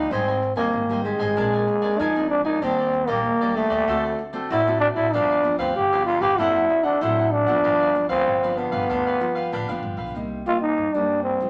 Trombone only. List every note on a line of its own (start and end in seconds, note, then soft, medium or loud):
0.00 0.13 D#4 medium
0.11 0.56 C4 loud
0.56 1.01 A#3 medium
1.05 2.01 G#3 medium
2.00 2.30 D#4 loud
2.30 2.45 D4 medium
2.45 2.64 D#4 loud
2.63 3.09 C4 loud
3.08 3.57 A#3 loud
3.55 4.23 A3 loud
4.50 4.80 E4 loud
4.80 4.88 D4 loud
4.96 5.15 E4 loud
5.13 5.58 D4 loud
5.59 5.77 C4 medium
5.76 6.05 G4 loud
6.06 6.23 F4 loud
6.21 6.40 G4 loud
6.39 6.86 E4 loud
6.84 7.03 D4 medium
7.02 7.34 E4 loud
7.32 8.09 D4 loud
8.09 8.59 C4 loud
8.58 9.84 B3 loud
10.47 10.61 F4 loud
10.61 10.96 D#4 medium
10.95 11.23 D4 loud
11.23 11.50 C4 medium